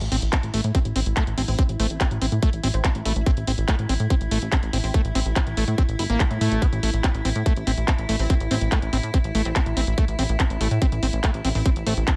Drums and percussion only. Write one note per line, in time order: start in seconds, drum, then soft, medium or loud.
0.01 closed hi-hat medium
0.12 open hi-hat loud
0.22 closed hi-hat medium
0.33 kick loud
0.33 clap loud
0.33 closed hi-hat loud
0.43 closed hi-hat medium
0.54 open hi-hat loud
0.64 closed hi-hat medium
0.75 kick loud
0.75 closed hi-hat medium
0.85 closed hi-hat medium
0.96 open hi-hat loud
1.06 closed hi-hat medium
1.17 kick loud
1.17 clap loud
1.17 closed hi-hat loud
1.27 closed hi-hat medium
1.38 open hi-hat loud
1.48 open hi-hat medium
1.59 kick loud
1.59 closed hi-hat loud
1.69 closed hi-hat medium
1.80 open hi-hat loud
1.90 closed hi-hat medium
2.01 kick loud
2.01 clap loud
2.01 closed hi-hat loud
2.11 closed hi-hat medium
2.22 open hi-hat loud
2.32 closed hi-hat medium
2.43 kick loud
2.43 closed hi-hat medium
2.53 closed hi-hat medium
2.63 open hi-hat loud
2.74 closed hi-hat medium
2.84 kick loud
2.84 clap loud
2.84 closed hi-hat medium
2.95 closed hi-hat medium
3.05 open hi-hat loud
3.16 closed hi-hat medium
3.26 kick loud
3.26 closed hi-hat medium
3.37 closed hi-hat medium
3.47 open hi-hat loud
3.58 closed hi-hat soft
3.68 kick loud
3.68 clap loud
3.68 closed hi-hat medium
3.79 closed hi-hat medium
3.89 open hi-hat loud
4.00 closed hi-hat medium
4.10 kick loud
4.10 closed hi-hat medium
4.21 closed hi-hat medium
4.31 open hi-hat loud
4.42 closed hi-hat medium
4.52 kick loud
4.52 clap loud
4.52 closed hi-hat medium
4.63 closed hi-hat medium
4.73 open hi-hat loud
4.84 open hi-hat medium
4.94 kick loud
4.94 closed hi-hat medium
5.05 closed hi-hat medium
5.15 open hi-hat loud
5.26 closed hi-hat soft
5.36 kick loud
5.36 clap loud
5.36 closed hi-hat medium
5.47 closed hi-hat soft
5.57 open hi-hat loud
5.68 closed hi-hat medium
5.78 kick loud
5.78 closed hi-hat medium
5.89 closed hi-hat medium
5.99 open hi-hat loud
6.10 closed hi-hat soft
6.20 kick loud
6.20 clap loud
6.20 closed hi-hat medium
6.31 closed hi-hat soft
6.41 open hi-hat loud
6.52 closed hi-hat medium
6.62 kick loud
6.62 closed hi-hat medium
6.73 closed hi-hat medium
6.83 open hi-hat loud
6.94 closed hi-hat medium
7.04 kick loud
7.04 clap loud
7.04 closed hi-hat medium
7.15 closed hi-hat medium
7.25 open hi-hat loud
7.36 closed hi-hat medium
7.46 kick loud
7.46 closed hi-hat medium
7.57 closed hi-hat medium
7.67 open hi-hat loud
7.77 closed hi-hat soft
7.88 kick loud
7.88 clap loud
7.88 closed hi-hat medium
7.98 closed hi-hat soft
8.09 open hi-hat loud
8.19 open hi-hat medium
8.30 kick loud
8.30 closed hi-hat loud
8.40 closed hi-hat medium
8.51 open hi-hat loud
8.61 closed hi-hat medium
8.72 kick loud
8.72 clap loud
8.72 closed hi-hat medium
8.82 closed hi-hat medium
8.93 open hi-hat loud
9.03 closed hi-hat medium
9.14 kick loud
9.14 closed hi-hat medium
9.24 closed hi-hat medium
9.35 open hi-hat loud
9.45 closed hi-hat medium
9.56 kick loud
9.56 clap loud
9.56 closed hi-hat medium
9.66 closed hi-hat medium
9.77 open hi-hat loud
9.87 closed hi-hat medium
9.98 kick loud
9.98 closed hi-hat loud
10.08 closed hi-hat medium
10.19 open hi-hat loud
10.29 closed hi-hat medium
10.40 kick loud
10.40 clap loud
10.40 closed hi-hat loud
10.50 closed hi-hat medium
10.61 open hi-hat loud
10.71 closed hi-hat medium
10.82 kick loud
10.82 closed hi-hat medium
10.92 closed hi-hat medium
11.03 open hi-hat loud
11.13 closed hi-hat medium
11.24 kick loud
11.24 clap loud
11.24 closed hi-hat medium
11.34 closed hi-hat medium
11.45 open hi-hat loud
11.55 open hi-hat medium
11.66 kick loud
11.66 closed hi-hat loud
11.76 closed hi-hat medium
11.87 open hi-hat loud
11.97 closed hi-hat medium
12.08 kick loud
12.08 clap loud
12.08 closed hi-hat loud